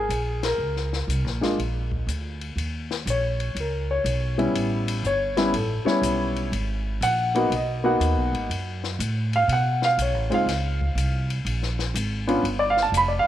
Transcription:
0.00 0.45 G#4 medium
0.09 0.57 A#1 medium
0.09 hi-hat pedal soft
0.09 ride medium
0.43 2.37 A#4 medium
0.43 snare medium
0.43 ride medium
0.58 1.06 C#2 medium
0.77 snare soft
0.93 snare soft
1.07 1.24 C2 medium
1.07 hi-hat pedal soft
1.07 ride soft
1.24 1.40 A#1 soft
1.24 snare soft
1.41 1.56 G#1 medium
1.41 1.56 G#3 medium
1.41 1.57 A#3 soft
1.41 1.56 D4 medium
1.41 1.57 F4 medium
1.41 snare soft
1.41 ride soft
1.58 2.06 A#1 medium
1.58 ride soft
1.92 kick soft
2.07 2.55 D2 medium
2.07 hi-hat pedal soft
2.07 ride medium
2.41 ride soft
2.56 3.04 D#2 medium
2.56 ride medium
2.91 snare soft
3.06 3.54 A#1 medium
3.06 hi-hat pedal soft
3.06 ride medium
3.10 3.54 C#5 medium
3.40 ride soft
3.55 4.03 C#2 medium
3.55 ride medium
3.60 3.90 A#4 soft
3.91 4.52 C#5 medium
4.04 4.53 B1 medium
4.04 hi-hat pedal soft
4.04 ride medium
4.38 5.01 G3 medium
4.38 5.01 B3 medium
4.38 5.01 C#4 medium
4.38 5.01 E4 medium
4.38 ride soft
4.54 5.02 A1 medium
4.54 ride medium
4.88 ride medium
5.03 5.52 G1 medium
5.03 5.51 C#5 medium
5.03 hi-hat pedal soft
5.37 5.52 G3 medium
5.37 5.52 B3 medium
5.37 5.52 C#4 medium
5.37 5.52 E4 medium
5.37 snare soft
5.37 ride soft
5.53 5.83 A1 medium
5.53 5.86 A4 medium
5.53 ride medium
5.85 6.48 G3 medium
5.85 6.49 B3 medium
5.85 6.49 C#4 medium
5.85 6.49 E4 medium
5.85 6.48 C#5 medium
5.85 muted upright bass stroke soft
5.85 snare soft
6.02 6.50 B1 medium
6.02 hi-hat pedal medium
6.02 ride medium
6.36 ride soft
6.52 7.00 G#1 medium
6.52 ride medium
7.01 7.49 A#1 medium
7.01 7.48 F#5 medium
7.01 hi-hat pedal medium
7.01 ride medium
7.35 7.50 A#3 medium
7.35 7.50 B3 medium
7.35 7.50 D#4 medium
7.35 7.50 F#4 medium
7.35 ride soft
7.50 7.99 B1 medium
7.50 ride medium
7.55 7.85 D#5 medium
7.84 8.47 A#3 medium
7.84 8.47 B3 medium
7.84 8.47 D#4 medium
7.84 8.47 F#4 medium
7.84 8.47 F#5 medium
8.00 8.17 D#2 medium
8.00 hi-hat pedal soft
8.00 ride medium
8.17 8.32 B1 medium
8.33 8.48 G#1 medium
8.33 ride soft
8.50 8.98 F#2 medium
8.50 ride medium
8.84 snare soft
8.99 9.47 A2 medium
8.99 hi-hat pedal medium
8.99 ride medium
9.33 9.50 F5 medium
9.33 ride soft
9.48 9.96 B2 medium
9.48 ride medium
9.53 9.82 F#5 medium
9.82 9.99 F5 medium
9.82 snare soft
9.97 10.14 B1 medium
9.97 hi-hat pedal soft
9.97 ride medium
10.02 10.32 C#5 medium
10.14 10.30 A1 medium
10.30 10.45 F#1 medium
10.30 10.45 G#3 medium
10.30 10.46 C4 soft
10.30 10.46 D#4 soft
10.30 10.46 F4 medium
10.30 ride soft
10.34 11.44 F5 medium
10.46 10.95 C#2 medium
10.46 snare soft
10.46 ride medium
10.81 kick medium
10.95 11.44 C2 medium
10.95 hi-hat pedal soft
10.95 ride medium
11.30 ride soft
11.45 11.93 A#1 medium
11.45 ride medium
11.63 snare soft
11.79 snare soft
11.94 12.42 G#1 medium
11.94 hi-hat pedal medium
11.94 ride medium
12.27 12.43 B3 medium
12.27 12.43 C#4 medium
12.27 12.43 D4 medium
12.27 12.43 F4 medium
12.27 ride soft
12.43 12.91 G1 medium
12.43 ride medium
12.59 12.76 D5 medium
12.70 12.82 F5 medium
12.77 snare soft
12.82 12.92 A5 medium
12.92 13.23 F1 medium
12.92 hi-hat pedal medium
12.92 ride medium
12.97 13.11 B5 loud
13.08 13.25 D5 medium
13.19 13.27 F5 medium

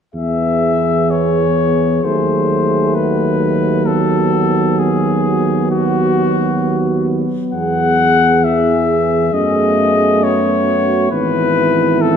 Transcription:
0.15 2.00 E2 soft
0.15 2.06 E3 soft
0.15 2.06 B3 soft
0.15 2.92 G#4 soft
0.15 1.12 E5 medium
1.11 2.06 C#5 medium
2.04 7.24 D#2 soft
2.04 8.19 F#3 soft
2.04 3.89 A3 soft
2.04 2.96 C5 medium
2.95 7.37 F#4 soft
2.95 3.88 B4 medium
3.86 9.08 B3 soft
3.86 4.80 A4 medium
4.79 5.70 G#4 medium
5.71 7.06 F#4 medium
7.53 9.29 E2 medium
7.53 10.19 G#4 soft
7.53 8.46 F#5 medium
8.44 9.30 E3 soft
8.44 9.35 E5 medium
9.33 11.08 F#2 soft
9.33 11.09 A3 soft
9.33 12.17 B3 soft
9.33 10.25 D#5 medium
10.24 11.12 F#4 soft
10.24 11.11 C#5 medium
11.11 12.17 G#1 medium
11.11 12.17 E3 soft
11.11 12.17 E4 medium
11.11 12.03 B4 medium
12.02 12.17 A4 medium

